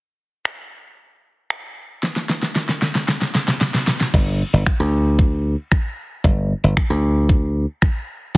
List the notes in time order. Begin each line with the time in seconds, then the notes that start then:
0.45 finger snap
1.50 finger snap
2.03 snare
2.16 snare
2.29 snare
2.43 snare
2.56 snare
2.69 snare
2.82 snare
2.95 snare
3.08 snare
3.22 snare
3.35 snare
3.48 snare
3.61 snare
3.74 snare
3.87 snare
4.01 snare
4.14 G1, kick, crash
4.53 G1
4.67 finger snap, kick
4.80 D2
5.19 kick
5.72 finger snap, kick
6.24 G1, kick
6.64 G1
6.77 finger snap, kick
6.90 D2
7.29 kick
7.82 finger snap, kick